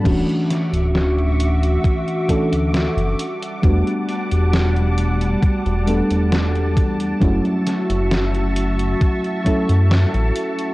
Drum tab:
CC |x---------------|----------------|----------------|
HH |xxxxxxxxxxxxxxxx|xxxxxxxxxxxxxxxx|xxxxxxxxxxxxxxxx|
SD |--o-o-------o---|----o-------o---|--o-o-------o---|
BD |o-------o-o-----|o-------o-----o-|o-------o-o-----|